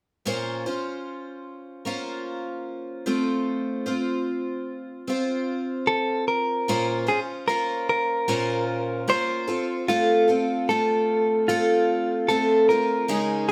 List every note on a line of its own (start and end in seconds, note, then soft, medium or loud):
0.26 0.65 A#2 medium
0.26 0.66 A#3 medium
0.26 0.66 C#4 medium
0.26 0.65 F4 medium
0.26 0.65 C5 medium
0.66 1.85 C#4 soft
0.66 1.86 F4 soft
0.66 1.87 C5 soft
1.85 3.06 A#3 soft
1.85 3.06 C#4 soft
1.85 3.06 F4 medium
1.85 3.06 C5 medium
3.06 3.87 A3 medium
3.06 3.88 C4 medium
3.06 3.86 F4 medium
3.06 3.85 C5 medium
3.86 5.07 C4 soft
3.86 5.09 F4 soft
3.86 5.09 C5 soft
5.08 6.69 C4 medium
5.08 6.69 F4 soft
5.08 6.69 C5 medium
5.87 6.24 A4 medium
6.28 7.08 A#4 medium
6.68 7.08 A#2 medium
6.68 7.08 A#3 medium
6.68 7.08 C#4 medium
6.68 7.07 F4 medium
6.68 7.05 C5 medium
7.07 7.48 C#4 soft
7.07 7.48 F4 soft
7.07 7.19 G#4 medium
7.07 7.47 C5 soft
7.48 8.27 A#3 soft
7.48 8.28 C#4 soft
7.48 8.28 F4 soft
7.48 7.88 A#4 medium
7.48 8.29 C5 soft
7.89 9.09 A#4 medium
8.28 9.08 A#2 medium
8.28 9.06 A#3 medium
8.28 9.07 C#4 medium
8.28 9.09 F4 medium
8.28 9.09 C5 medium
9.08 9.48 A#3 medium
9.08 9.48 C#4 soft
9.08 9.47 F4 medium
9.08 9.47 C5 medium
9.48 9.88 C4 soft
9.48 9.88 F4 soft
9.48 9.88 A4 soft
9.88 10.28 A3 medium
9.88 10.29 C4 medium
9.88 10.28 F4 medium
9.88 10.27 A4 medium
10.28 10.69 C4 soft
10.28 10.69 F4 soft
10.28 10.68 A4 soft
10.69 11.48 A3 soft
10.69 11.48 C4 soft
10.69 11.48 F4 soft
10.69 11.48 A4 medium
11.49 12.28 A3 medium
11.49 12.28 C4 medium
11.49 12.29 F4 medium
11.49 12.29 A4 medium
12.29 12.69 A3 medium
12.29 12.69 C4 medium
12.29 12.69 F4 medium
12.29 12.70 A4 medium
12.69 13.09 C4 soft
12.69 13.09 F4 soft
12.69 13.48 A#4 medium
13.08 13.49 C#3 medium
13.08 13.49 G#3 medium
13.08 13.49 C#4 medium
13.08 13.48 D#4 medium
13.08 13.47 G#4 medium
13.49 13.52 G#4 soft